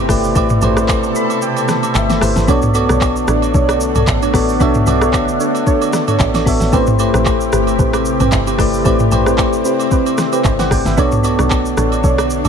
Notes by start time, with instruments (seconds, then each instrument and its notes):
Already playing: analog synth pad B2 C3 A3 G4, synth keys A3 E4 G4 B4 C5
0.08 log drum bass G1, synth keys A3 E4 G4 B4 D5, kick, cross-stick, open hi-hat, shaker
0.24 shaker
0.35 log drum bass A1, synth keys A3 E4 G4 B4 D5, analog synth pad A4, kick, high agogo, shaker
0.49 mid tom, shaker
0.61 log drum bass A1, synth keys A3 E4 G4 B4 C5, high agogo, shaker
0.77 cross-stick, shaker
0.88 kick, clap, high agogo, shaker
1.03 shaker
1.15 synth keys B5, shaker
1.30 high agogo, shaker
1.42 synth keys G5, shaker
1.57 high agogo, shaker
1.68 cross-stick, snare, shaker
1.83 high agogo, shaker
1.95 log drum bass G1, synth keys E5, clap, low woodblock, shaker
2.10 snare, high agogo, shaker
2.21 log drum bass G1, synth keys A3 E4 G4 B4 C5, cross-stick, open hi-hat, shaker
2.36 log drum bass G1, snare, shaker
2.47 log drum bass B1, analog synth pad D3 D4, synth keys B3 F#4 A4 C#5 D5, synth stab D4 A4 C#5, kick, high agogo, shaker
2.62 mid tom, shaker
2.74 synth keys B3 F#4 A4 C#5 D5, high agogo, shaker
2.89 log drum bass B1, synth stab D4 A4 C#5, cross-stick, shaker
3.01 kick, clap, high agogo, shaker
3.16 shaker
3.28 log drum bass A1, synth stab D4 A4 C#5, cross-stick, shaker
3.42 high agogo, shaker
3.54 log drum bass B1, synth stab D4 A4 C#5, kick, shaker
3.69 cross-stick, high agogo, shaker
3.81 shaker
3.95 log drum bass B1, synth stab D4 A4 C#5, mid tom, high agogo, shaker
4.07 log drum bass A1, kick, clap, low woodblock, shaker
4.22 synth stab D4 A4 C#5, high agogo, shaker
4.33 log drum bass A1, synth keys B3 F#4 A4 C#5 D5, kick, cross-stick, open hi-hat, shaker
4.49 shaker
4.60 log drum bass B1, synth keys B3 F#4 A4 C#5 E5, synth stab D4 A4 C#5, kick, high agogo, shaker
4.74 mid tom, shaker
4.86 log drum bass B1, synth keys B3 F#4 A4 C#5 D5, high agogo, shaker
5.01 synth stab D4 A4 C#5, cross-stick, shaker
5.13 kick, clap, high agogo, shaker
5.28 shaker
5.40 synth stab D4 A4 C#5, shaker
5.55 high agogo, shaker
5.66 synth stab D4 A4 C#5, kick, shaker
5.82 high agogo, shaker
5.93 cross-stick, snare, shaker
6.08 synth stab D4 A4 C#5, mid tom, high agogo, shaker
6.20 log drum bass A1, kick, clap, low woodblock, shaker
6.34 synth stab D4 A4 C#5, snare, high agogo, shaker
6.45 log drum bass A1, synth keys B3 F#4 A4 C#5 E5, kick, open hi-hat, shaker
6.60 log drum bass A1, snare, shaker
6.72 log drum bass A1, analog synth pad C3 G4, synth keys A3 E4 G4 B4 C5, synth stab C4 G4 B4, kick, high agogo, shaker
6.87 mid tom, shaker
6.99 synth keys A3 E4 G4 B4 C5, high agogo, shaker
7.14 log drum bass A1, synth stab C4 G4 B4, cross-stick, shaker
7.26 kick, clap, high agogo, shaker
7.41 shaker
7.52 log drum bass G1, synth stab C4 G4 B4, cross-stick, shaker
7.67 high agogo, shaker
7.79 log drum bass A1, synth stab C4 G4 B4, kick, shaker
7.93 cross-stick, high agogo, shaker
8.05 shaker
8.20 log drum bass A1, synth stab C4 G4 B4, mid tom, high agogo, shaker
8.32 log drum bass G1, kick, clap, low woodblock, shaker
8.47 synth stab C4 G4 B4, high agogo, shaker
8.58 log drum bass G1, synth keys A3 E4 G4 B4 D5, kick, cross-stick, open hi-hat, shaker
8.74 shaker
8.84 log drum bass A1, synth keys A3 E4 G4 B4 D5, analog synth pad C4, synth stab C4 G4 B4, kick, high agogo, shaker
8.99 mid tom, shaker
9.11 log drum bass A1, synth keys A3 E4 G4 B4 C5, high agogo, shaker
9.26 synth stab C4 G4 B4, cross-stick, shaker
9.38 kick, clap, high agogo, shaker
9.53 shaker
9.65 synth stab C4 G4 B4, shaker
9.79 high agogo, shaker
9.91 synth stab C4 G4 B4, kick, shaker
10.06 high agogo, shaker
10.18 cross-stick, snare, shaker
10.32 synth stab C4 G4 B4, high agogo, shaker
10.44 log drum bass G1, kick, clap, low woodblock, shaker
10.59 synth stab C4 G4 B4, synth keys C5 F#5, snare, high agogo, shaker
10.71 log drum bass G1, synth keys D5 G5, kick, cross-stick, open hi-hat, shaker
10.85 log drum bass G1, synth keys B4 E5, snare, shaker
10.97 log drum bass B1, analog synth pad D3 A3 D4, synth keys B3 F#4 A4 C#5 D5, synth stab D4 A4 C#5, kick, high agogo, shaker
11.12 mid tom, shaker
11.23 synth keys B3 F#4 A4 C#5 D5, high agogo, shaker
11.39 log drum bass B1, synth stab D4 A4 C#5, cross-stick, shaker
11.50 kick, clap, high agogo, shaker
11.65 shaker
11.77 log drum bass A1, synth stab D4 A4 C#5, cross-stick, shaker
11.92 high agogo, shaker
12.04 log drum bass B1, synth stab D4 A4 C#5, kick, shaker
12.18 cross-stick, high agogo, shaker
12.30 shaker
12.45 log drum bass B1, synth stab D4 A4 C#5, mid tom, high agogo, shaker